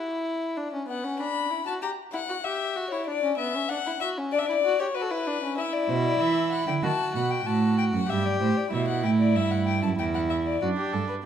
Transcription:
Already playing: E4
0.58 D4
0.73 C#4
0.89 B3 F#5
1.04 C#4
1.20 D4 B5
1.51 E4
1.67 F#4 A5
1.82 G4 A#5
2.13 E4 F#5
2.29 F#4
2.44 G4 E5
2.76 F#4
2.91 E4 C#5
3.06 D4 D5
3.24 C#4
3.38 B3 E5
3.55 C#4
3.69 D4 F#5
3.86 E4
4.01 F#4 E5
4.18 C#4
4.32 D4 D5
4.39 E5
4.46 E4 D5
4.65 F#4
4.79 G4 C#5
4.95 F#4 B4
5.02 A4
5.09 E4 B4
5.27 D4
5.43 C#4
5.58 E4 E5
5.73 D5
5.89 B2 C5
6.05 D5
6.20 E3 E5
6.52 F#5
6.67 D3 G5
6.83 D#3 F#4 A5
7.15 B2 F#5
7.31 G5
7.46 A2 F#4 A5
7.78 G5
7.93 F#2 F#5
8.09 G2 G4 E5
8.25 D5
8.40 A2 C5
8.57 D5
8.72 B2 E4 E5
8.88 F#5
9.04 A2 G5
9.20 D5
9.35 G2 E5
9.51 F#5
9.67 G5
9.82 F#2 A5
9.98 E2 E4 G5
10.15 F#5
10.30 E5
10.47 D5
10.62 F#2 D4 F#4
10.77 G4
10.93 G2 A4
11.08 B4

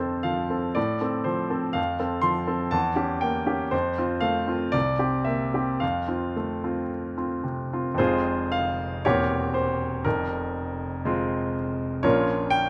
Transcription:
Already playing: F2 C5
0.00 C4 A4
0.23 F3 F5
0.50 C4 A4
0.75 A2 D5
1.01 C4 A4
1.24 F3 C5
1.50 C4 A4
1.73 F2 F5
2.00 C4 A4
2.22 F3 C6
2.47 C4 A4
2.71 E2 A5
2.95 C#4 G4
3.21 A#3 G5
3.46 C#4 G4
3.71 F2 C5
3.98 C4 F4
4.21 A3 F5
4.47 C4 F4
4.72 C2 D5
4.99 C4 G4
5.25 A#3 E5
5.54 C4 G4
5.80 F2 F5
6.08 C4 F4
6.36 A3
6.64 C4 F4
7.18 C4 F4
7.44 C3
7.73 C4 F4
7.94 F2 C5
7.99 F1 G#3 C4 F4 G#4
8.52 F5
9.05 E1 E2 A#3 C4 G4 A#4 C#5
9.54 C5
10.05 F1 F2 A#4
11.05 G#3 C4 F4
12.03 A#1 A#2 F3 C#4 F4 A#4 C#5
12.50 G5

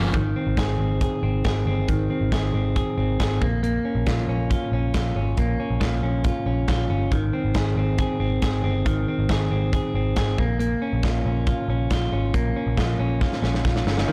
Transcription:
Already playing: G1 F3 A#3 C#4 F4 C#5 G#5 C#6
0.13 G#1 D#3, kick, closed hi-hat
0.36 C4
0.47 G#1
0.57 G#4, kick, snare, closed hi-hat
0.79 G#1 C4
1.01 G#4, kick, closed hi-hat
1.23 G#1 C4
1.45 G#1 G#4, kick, snare, closed hi-hat
1.66 G1 C4
1.88 G#1 D#3, kick, closed hi-hat
2.10 C4
2.21 G#1
2.32 G#1 G#4, kick, snare, closed hi-hat
2.54 G#1 C4
2.76 G#4, kick, closed hi-hat
2.97 G#1 C4
3.20 G#1 G#4, kick, snare, closed hi-hat
3.41 A#1 A#3, kick
3.63 A#3, closed hi-hat
3.85 C#4
3.95 A#1
4.06 F4, kick, snare, closed hi-hat
4.28 A#1 C#4
4.50 F4, kick, closed hi-hat
4.72 A#1 C#4
4.94 A#1 F4, kick, snare, closed hi-hat
5.16 G#1 C#4
5.37 A#1 A#3, kick, closed hi-hat
5.60 C#4
5.70 A#1
5.81 A#1 F4, kick, snare, closed hi-hat
6.03 A#1 C#4
6.24 F4, kick, closed hi-hat
6.46 A#1 C#4
6.68 A#1 F4, kick, snare, closed hi-hat
6.90 G1 C#4
7.12 G#1 D#3, kick, closed hi-hat
7.33 C4
7.44 G#1
7.54 G#1 G#4, kick, snare, closed hi-hat
7.76 G#1 C4
7.98 G#4, kick, closed hi-hat
8.20 G#1 C4
8.42 G#1 G#4, kick, snare, closed hi-hat
8.64 G1 C4
8.86 G#1 D#3, kick, closed hi-hat
9.08 C4
9.19 G#1
9.29 G#1 G#4, kick, snare, closed hi-hat
9.51 G#1 C4
9.73 G#4, kick, closed hi-hat
9.94 G#1 C4
10.16 G#1 G#4, kick, snare, closed hi-hat
10.38 A#1 A#3, kick
10.59 A#3, closed hi-hat
10.82 C#4
10.93 A#1
11.03 F4, kick, snare, closed hi-hat
11.25 A#1 C#4
11.47 F4, kick, closed hi-hat
11.68 A#1 C#4
11.91 A#1 F4, kick, snare, closed hi-hat
12.12 G#1 C#4
12.34 A#1 A#3, kick, closed hi-hat
12.56 C#4
12.67 A#1
12.77 A#1 F4, kick, snare, closed hi-hat
12.99 A#1 C#4
13.21 F4, kick, snare
13.33 snare
13.42 A#1 C#4, snare
13.54 snare
13.65 A#1 F4, kick, snare
13.76 snare
13.86 G1 C#4, snare
13.98 snare
14.08 D#3 D#4 C5 G#5

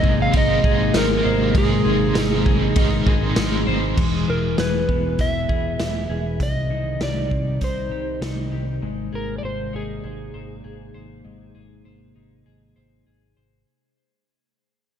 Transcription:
Already playing: C3 G#3 A#3 C4 D#4 A#4 C5 D#5
0.03 G#1 G#4, kick
0.22 F5
0.32 G#1 G#3 C4 D#4, kick, ride
0.37 A#4 D#5
0.64 G#1 G#4, kick
0.92 G#1 G#3 C4 D#4, snare, ride, tambourine
0.97 A#4
1.24 G#1 C5
1.53 G#1 G#3 C4 D#4 A#4, kick, ride
1.58 G#4
1.85 G#1 G#4
2.13 G#1 G#3 C4 D#4, snare, ride, tambourine
2.19 A#4
2.45 G#1 G#4, kick
2.74 G#1 G#3 C4 D#4, kick, ride
2.79 A#4
3.06 G#1 G#4, kick
3.35 G#1 G#3 C4 D#4, snare, ride, tambourine
3.40 A#4
3.67 G#1 C5
3.97 E1 B2 E3 G#3 E4, kick, crash
4.28 E1 E4 A#4
4.58 E1 G#4 B4, snare, closed hi-hat
4.88 E1 B3, kick
5.19 E1 E4 E5, kick, closed hi-hat
5.49 E1 G#4, kick
5.79 E1 E4, snare, closed hi-hat
6.09 E1 G#4
6.40 C2 C3 D#3 G3 D#4 D#5, kick, closed hi-hat
6.70 C2 D#4
7.00 C2 G4 D5, snare, closed hi-hat
7.30 C2 C4, kick
7.61 C2 D#4 C5, kick, closed hi-hat
7.91 C2 G4
8.21 C2 D#4, snare, closed hi-hat
8.52 C2 G4
8.82 G#1 C3 G#3 A#3 D#4
9.13 G#1 G#4 A#4
9.38 D5
9.43 G#1 C5
9.73 G#1 D#4 G#4
10.04 G#1 G#4
10.34 G#1 C5
10.64 G#1 G#4
10.94 G#1 C5
11.25 G#1 G#3
11.55 G#1 G#4
11.85 G#1 C5
12.16 G#1 D#4
12.46 G#1 G#4
12.76 G#1 C5
13.07 G#1 G#4
13.37 G#1 C5

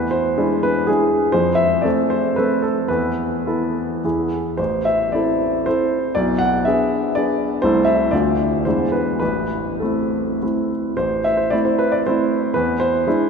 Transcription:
Already playing: E2 B4
0.11 C5
0.38 G#3 D4 E4
0.63 B4
0.87 G#3 D4 E4 G#4
1.32 F2 C5
1.55 E5
1.82 A3 C4 A4 D5
2.10 C5
2.36 A3 C4 A4 B4
2.62 A4
2.88 E2 B4
3.47 B3 E4 A4
4.04 E2 B3 E4 G#4
4.57 A1 C5
4.85 E5
5.12 C4 E4 A4 D5
5.66 C4 E4 A4 C5
6.15 B1 D5
6.38 F#5
6.65 B3 D4 G#4 E5
7.15 B3 D4 G#4 D5
7.62 C2 A3 E4 A4 C5
7.85 E5
8.11 D2 A3 D4 F4 D5
8.65 E2 G#3 D4 E4 C5
8.92 B4
9.20 A1 B4
9.80 A3 C4 E4 A4
10.42 A3 C4 E4
10.97 A1 C5
11.24 E5
11.37 C5
11.50 A3 C4 E4 D5
11.65 C5
11.79 B4
11.92 D5
12.07 A3 C4 E4 C5
12.54 E2 B4
12.80 C5
13.07 G#3 D4 E4

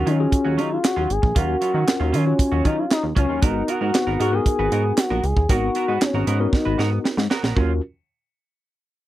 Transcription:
Already playing: C#4 F4 F#4 A#4
0.06 D#3 F#3 C#4 F4, closed hi-hat
0.19 C#4 F4 F#4 G#4, muted clean electric guitar stroke
0.31 muted clean electric guitar stroke, kick, closed hi-hat
0.45 D#2 F#3 C#4 F#4
0.57 D#3 F#3 C#4 D#4 F4, closed hi-hat
0.71 F4, muted clean electric guitar stroke
0.83 F#4, muted clean electric guitar stroke, snare, clap, closed hi-hat
0.96 D#2 F#3 C#4 F4
1.10 G#1 G#4, closed hi-hat
1.22 A#1, muted clean electric guitar stroke, kick
1.35 D#2 F#3 C#4 F4 F#4 A#4 F5, kick, closed hi-hat
1.61 F#3 C#4 F4, closed hi-hat
1.74 D#3 F#3 C#4 F#4
1.86 C#4 F4 F#4 A#4, muted clean electric guitar stroke, snare, clap, closed hi-hat
2.00 D#2 F#3 C#4 F4
2.12 D#3 F#3 C#4 F4, closed hi-hat
2.26 C#4 F4 F#4 C#5, muted clean electric guitar stroke
2.39 muted clean electric guitar stroke, kick, closed hi-hat
2.52 D#2 F#3 C#4 F#4
2.64 D#3 F#3 C#4 D#4 F4, kick, closed hi-hat
2.78 F4, muted clean electric guitar stroke
2.90 D#4, muted clean electric guitar stroke, snare, clap, closed hi-hat
3.03 D#2, muted clean electric guitar stroke
3.15 C#2 F#3 C#4 F4, kick, closed hi-hat
3.29 D#2 F#3 C#4 F4
3.42 G#1 B3 D#4 F#4 A#4, kick, closed hi-hat
3.68 B3 F#4 A#4, closed hi-hat
3.81 G#2 B3 F#4 A#4
3.94 B3 D#4 F#4 B4, muted clean electric guitar stroke, snare, clap, closed hi-hat
4.07 G#1 B3 F#4 A#4
4.20 G#2 B3 F#4 A#4, closed hi-hat
4.32 B3 D#4 F#4 G#4 A#4, muted clean electric guitar stroke
4.46 muted clean electric guitar stroke, kick, closed hi-hat
4.59 G#1 B3 F#4 B4
4.72 G#2 B3 F#4 A#4, closed hi-hat
4.85 muted clean electric guitar stroke
4.97 F#4, muted clean electric guitar stroke, snare, clap, closed hi-hat
5.10 A#1 B3 F#4 A#4
5.24 C#2 G#4, muted clean electric guitar stroke, closed hi-hat
5.37 D#2, muted clean electric guitar stroke, kick
5.49 G#1 B3 D#4 F#4 A#4, kick, closed hi-hat
5.75 B3 F#4 A#4, closed hi-hat
5.88 G#2 B3 F#4 B4
6.01 B3 C#4 D#4 F#4 C#5, muted clean electric guitar stroke, snare, clap, closed hi-hat
6.14 G#1 B3 F#4 A#4
6.27 G#2 B3 F#4 A#4, closed hi-hat
6.40 B3 D#4 F#4 A#4, muted clean electric guitar stroke
6.53 D#4, muted clean electric guitar stroke, kick, snare
6.65 G#1 B3 F#4 B4
6.78 G#2 B3 F#4 A#4, snare
6.91 muted clean electric guitar stroke
7.04 muted clean electric guitar stroke, snare
7.17 G#2, muted clean electric guitar stroke, snare
7.30 B3 F#4 A#4, snare
7.43 A#1 B3 F#4 A#4, snare
7.56 D#2 F#3 C#4 F4 F#4 A#4, kick

